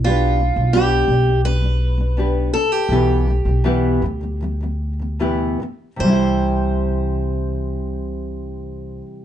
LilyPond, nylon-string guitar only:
\new Staff \with { instrumentName = "Nylon-string guitar" } { \time 4/4 \key c \major \tempo 4 = 78 <b d' g' b'>8 b16 <b d'>16 <b d' g' b'>8 <b d'>16 <b d'>16 <b d'>16 <b d'>8 <b d'>16 <b d' g' b'>8 <b d'>8 | <b, e b e' g' b'>8 <b, e b>16 <b, e b>16 <b, e b e' g' b'>8 <b, e b>16 <b, e b>16 <b, e b>16 <b, e b>8 <b, e b>16 <b, e b e' g' b'>8 <b, e b>8 | <c e g c' e' c''>1 | }